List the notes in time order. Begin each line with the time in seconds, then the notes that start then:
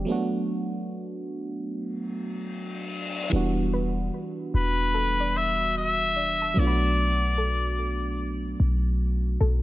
0.05 F#3 A3 B3
0.10 D4 F#4
1.70 reverse cymbal
3.29 E1 E3 G3 B3
3.34 D4 F#4
3.73 B4
4.54 E1 B4
4.94 A4
5.20 D5
5.37 E5
5.78 E5
6.16 D5
6.42 A5
6.54 B1 F#3 A3 B3
6.59 D4 F4 D5
6.67 F#4 B5
7.38 A4
8.60 B1
9.41 B1 A4